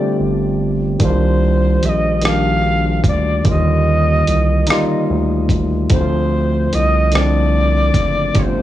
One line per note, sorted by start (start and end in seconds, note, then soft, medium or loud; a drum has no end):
0.00 1.02 D3 medium
0.00 1.01 G3 medium
0.00 1.02 A3 medium
0.00 1.02 C4 medium
0.00 1.02 F4 medium
0.00 0.79 G4 medium
0.00 0.16 D5 medium
0.20 0.97 G1 medium
0.99 1.78 C2 medium
0.99 1.99 D#3 medium
0.99 2.00 G3 medium
0.99 2.01 A#3 medium
0.99 kick medium
0.99 closed hi-hat medium
1.03 2.01 D4 medium
1.03 2.02 F4 medium
1.03 1.87 C5 medium
1.83 3.01 A#1 medium
1.83 1.90 E5 medium
1.83 closed hi-hat medium
1.89 2.25 D#5 medium
2.21 3.22 D#3 medium
2.21 3.23 G3 medium
2.21 3.23 A#3 medium
2.21 cross-stick medium
2.21 closed hi-hat medium
2.26 3.24 D4 medium
2.26 2.31 F#4 soft
2.26 3.02 F5 medium
2.33 3.28 G4 medium
3.04 3.41 D2 medium
3.04 3.44 D5 medium
3.04 kick medium
3.04 closed hi-hat medium
3.44 4.23 D#2 medium
3.44 4.46 D3 medium
3.44 4.44 D#3 medium
3.44 3.52 F3 soft
3.44 4.46 A#3 medium
3.44 kick medium
3.44 closed hi-hat medium
3.49 4.48 G3 medium
3.49 4.47 F4 medium
3.49 5.07 D#5 medium
4.27 4.65 C2 medium
4.27 closed hi-hat medium
4.67 4.77 D2 soft
4.67 5.68 G3 medium
4.67 5.69 A#3 medium
4.67 5.67 D#4 medium
4.67 cross-stick medium
4.67 closed hi-hat medium
4.72 5.70 F4 medium
5.10 5.87 D2 medium
5.49 kick medium
5.49 closed hi-hat medium
5.89 6.68 D2 medium
5.89 6.90 D3 medium
5.89 6.90 F3 medium
5.89 6.91 A3 medium
5.89 6.76 C5 medium
5.89 kick loud
5.89 closed hi-hat medium
5.93 6.92 C4 medium
5.93 5.99 E4 medium
6.01 6.95 F4 medium
6.73 7.91 C2 medium
6.73 7.18 D#5 medium
6.73 closed hi-hat medium
7.12 8.12 D3 medium
7.12 8.13 F3 medium
7.12 8.13 A3 medium
7.12 8.14 C4 medium
7.12 cross-stick medium
7.12 closed hi-hat medium
7.16 8.15 D4 medium
7.16 8.41 D5 medium
7.94 8.31 F#1 medium
7.94 kick medium
7.94 closed hi-hat medium
8.34 8.62 G1 loud
8.34 8.62 D3 medium
8.34 8.62 G3 medium
8.34 8.62 A3 medium
8.34 8.62 C4 medium
8.34 kick loud
8.34 closed hi-hat medium
8.39 8.62 F4 medium
8.39 8.62 C5 medium
8.39 8.44 C#5 medium